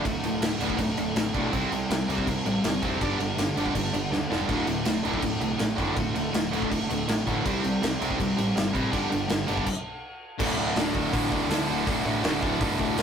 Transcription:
0.05 D1 D2 A2 D3 A3 F#4, kick, crash
0.23 D1 D2 A2, crash
0.41 D1 D2 A2, snare, crash
0.60 D1 D2 A2 D3, crash
0.70 kick
0.78 D1 D2 A2, kick, crash
0.97 D1 D2 A2, crash
1.16 A1 D2 A2, snare, crash
1.34 B1 D2 A2 D3, kick, crash
1.53 C2 C3 G3 C4 E4 G4 C5, kick, crash
1.71 C2 C3 G3, crash
1.90 C2 C3 G3, snare, crash
2.09 C2 C3 G3 C4, crash
2.18 kick
2.27 C2 C3 G3, kick, crash
2.46 A1 C3 G3, crash
2.64 G1 C3 G3, snare, crash
2.82 E1 C3 G3 C4, kick, crash
3.01 G1 G2 D3 G3 B3 D4 G4, kick, crash
3.18 G1 G2 D3, crash
3.37 G1 G2 D3, snare, crash
3.56 G1 G2 D3 G3, crash
3.66 kick
3.74 G1 G2 D3, kick, crash
3.93 G1 G2 D3, crash
4.11 D2 G2 D3, snare
4.30 E1 G2 D3 G3, snare
4.48 D1 D2 A2 D3 A3 F#4, kick, crash
4.67 D1 D2 A2, crash
4.85 D1 D2 A2, snare, crash
5.05 D1 D2 A2 D3, crash
5.14 kick
5.22 D1 D2 A2, kick, crash
5.41 C2 D2 A2, crash
5.59 A1 D2 A2, snare, crash
5.77 F#1 D2 A2 D3, kick, crash
5.96 D1 D2 A2 D3 A3 F#4, kick, crash
6.15 D1 D2 A2, crash
6.34 D1 D2 A2, snare, crash
6.52 D1 D2 A2 D3, crash
6.62 kick
6.72 D1 D2 A2, kick, crash
6.90 D1 D2 A2, crash
7.08 A1 D2 A2, snare, crash
7.27 A1 D2 A2 D3, kick, crash
7.45 C2 C3 G3 C4 E4 G4 C5, kick, crash
7.64 C2 C3 G3, crash
7.83 C2 C3 G3, snare, crash
8.01 C2 C3 G3 C4, crash
8.11 kick
8.20 C2 C3 G3, kick, crash
8.38 A1 C3 G3, crash
8.57 G1 C3 G3, snare, crash
8.74 A1 C3 G3 C4, kick, crash
8.92 G1 G2 D3 G3 B3 D4, kick, crash
8.97 G4
9.10 G1 G2 D3, crash
9.28 G1 G2 D3, snare, crash
9.46 G1 G2 D3 G3, crash
9.57 kick
9.66 kick, crash
10.38 D1 D2 A2 D3, kick, crash
10.43 A3 F#4
10.57 D1 D2 A2 D3
10.75 D1 D2 A2 D3, snare, open hi-hat
10.93 D1 D2 A2 D3, kick
11.12 A1 D2 A2 D3, kick, open hi-hat
11.30 D1 D2 A2 D3, kick
11.49 D2 A2 D3, snare, open hi-hat
11.67 D1 D2 A2 D3 A3 F#4
11.86 D1 D2 A2 D3 A3 F#4, kick, open hi-hat
12.04 A1 D2 A2 D3
12.23 D1 D2 A2 D3, snare, open hi-hat
12.42 D1 D2 A2 D3, kick
12.61 G1 D2 A2 D3, kick, open hi-hat
12.78 D1 D2 A2 D3, kick
12.98 D1 D2 A2 D3, snare, open hi-hat

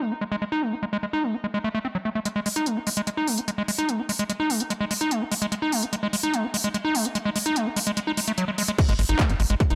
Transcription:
0.01 G#3
0.11 D#4
0.21 G#3
0.32 G#3
0.42 G#3
0.52 D#4
0.62 G#3
0.72 D#4
0.83 G#3
0.93 G#3
1.03 G#3
1.13 D#4
1.23 G#3
1.34 D#4
1.44 G#3
1.54 G#3
1.64 A3
1.74 A3
1.85 C4
1.95 F#3
2.05 A3
2.15 A3
2.25 G#3, closed hi-hat
2.36 G#3
2.46 G#3, open hi-hat
2.56 D#4, closed hi-hat
2.66 G#3, closed hi-hat
2.77 D#4
2.87 G#3, open hi-hat
2.97 G#3, closed hi-hat
3.07 G#3, closed hi-hat
3.17 D#4
3.27 G#3, open hi-hat
3.38 D#4, closed hi-hat
3.48 G#3, closed hi-hat
3.58 G#3
3.68 G#3, open hi-hat
3.79 D#4, closed hi-hat
3.89 G#3, closed hi-hat
3.99 D#4
4.09 G#3, open hi-hat
4.19 G#3, closed hi-hat
4.30 G#3, closed hi-hat
4.40 D#4
4.50 G#3, open hi-hat
4.60 D#4, closed hi-hat
4.70 G#3, closed hi-hat
4.81 G#3
4.91 G#3, open hi-hat
5.01 D#4, closed hi-hat
5.11 G#3, closed hi-hat
5.21 D#4
5.32 G#3, open hi-hat
5.42 G#3, closed hi-hat
5.52 G#3, closed hi-hat
5.62 D#4
5.72 G#3, open hi-hat
5.83 D#4, closed hi-hat
5.93 G#3, closed hi-hat
6.03 G#3
6.13 G#3, open hi-hat
6.23 D#4, closed hi-hat
6.34 G#3, closed hi-hat
6.44 D#4
6.54 G#3, open hi-hat
6.64 G#3, closed hi-hat
6.74 G#3, closed hi-hat
6.85 D#4
6.95 G#3, open hi-hat
7.05 D#4, closed hi-hat
7.15 G#3, closed hi-hat
7.25 G#3
7.36 G#3, open hi-hat
7.46 D#4, closed hi-hat
7.56 G#3, closed hi-hat
7.66 D#4
7.76 G#3, open hi-hat
7.87 G#3, closed hi-hat
7.97 G#3, closed hi-hat
8.07 D#4
8.17 G#3, open hi-hat
8.27 A3, closed hi-hat
8.38 F#3, closed hi-hat
8.48 G#3
8.58 G#3, open hi-hat
8.68 G#3, closed hi-hat
8.78 G#3, kick, closed hi-hat, crash
8.89 G#1 G#3, closed hi-hat
8.99 G#1 G#3, open hi-hat
9.09 G#1 D#4, closed hi-hat
9.19 G#3, kick, clap, closed hi-hat
9.30 G#1 D#4, closed hi-hat
9.40 G#1 G#3, open hi-hat
9.50 G#1 G#3, closed hi-hat
9.60 G#3, kick, closed hi-hat
9.70 F#1 D#4, closed hi-hat

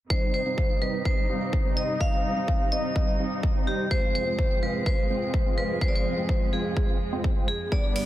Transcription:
0.10 C3 G3 C4 D#4 C5 D#5, kick
0.34 C5
0.46 G3 C4 D#4 C5 F5
0.58 kick
0.82 G3 C4 D#4 B4 C5 D#5
1.05 G3 C4 D#4 C5 D#5, kick
1.29 G3 C4 D#4 C5 F5
1.53 kick
1.65 G3 C4 D#4 C5 D#5
1.77 D#5
2.01 F5, kick
2.36 G3 C4 D#4 C5 F5
2.48 kick
2.72 G3 C4 D#4 C5 D#5
2.96 G3, kick
3.19 G3 C4 D#4 C5 F5
3.43 kick
3.55 G3 C4 D#4 C5 D#5
3.67 G4
3.91 F2 G#3 C4 C5, kick
4.15 C5
4.27 G#3 C4 F4 C5 G5
4.39 kick
4.62 G#3 C4 F4 B4 C5 F5
4.86 G#3 C4 F4 C5, kick
5.10 G#3 C4 F4 C5 G5
5.34 kick
5.46 G#3 C4 F4 C5 F5
5.58 B4
5.81 G#3 C4 C5, kick
5.88 D5
5.96 C5
6.17 G#3 C4 F4 C5 G5
6.29 kick
6.53 G#3 C4 F4 G#4 C5 F5
6.77 G#3, kick
7.12 G#3 C4 F4 C5 G5
7.24 kick
7.36 G#3 C4 F4 C5 G5
7.48 G#4
7.72 G2 D3 G3 B3 D4 B4 D5, kick
7.96 D5, open hi-hat

